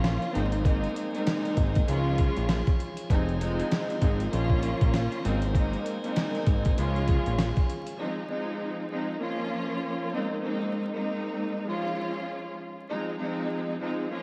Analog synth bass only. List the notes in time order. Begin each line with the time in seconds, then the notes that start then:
Already playing: A#1
0.35 G#1
1.57 G#1
1.88 C#2
2.37 A#1
3.10 F1
4.02 G#1
4.33 A#1
4.82 A#1
5.25 G#1
6.47 G#1
6.78 C#2
7.27 A#1